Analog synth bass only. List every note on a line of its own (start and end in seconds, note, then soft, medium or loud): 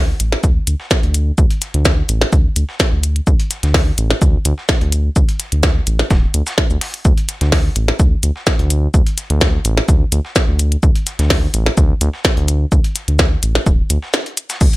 0.00 0.14 D2 medium
0.20 0.36 A1 medium
0.44 0.59 D2 medium
0.67 0.75 D2 loud
1.03 1.32 D2 loud
1.38 1.46 D2 loud
1.74 2.03 D2 medium
2.09 2.25 A1 medium
2.33 2.48 D2 medium
2.56 2.64 D2 medium
2.92 3.21 D2 medium
3.27 3.35 D2 loud
3.63 3.92 D2 medium
3.98 4.14 A1 medium
4.22 4.37 D2 medium
4.45 4.53 D2 loud
4.81 5.10 D2 loud
5.16 5.24 D2 medium
5.52 5.81 D2 medium
5.87 6.03 A1 medium
6.11 6.26 D1 medium
6.34 6.42 D2 medium
6.70 6.78 D2 medium
7.05 7.13 D2 loud
7.41 7.70 D2 medium
7.76 7.92 A1 medium
8.00 8.15 D2 medium
8.23 8.31 D2 loud
8.59 8.88 D2 loud
8.94 9.02 D2 loud
9.30 9.59 D2 medium
9.65 9.81 A1 medium
9.88 10.04 D2 medium
10.12 10.20 D2 loud
10.48 10.77 D2 loud
10.83 10.91 D2 loud
11.19 11.48 D2 medium
11.54 11.70 A1 medium
11.77 11.93 D2 medium
12.01 12.09 D2 loud
12.37 12.66 D2 loud
12.72 12.80 D2 loud
13.08 13.36 D2 medium
13.43 13.59 A1 medium
13.66 13.82 D1 medium
13.90 13.98 D2 medium
14.61 14.69 D2 loud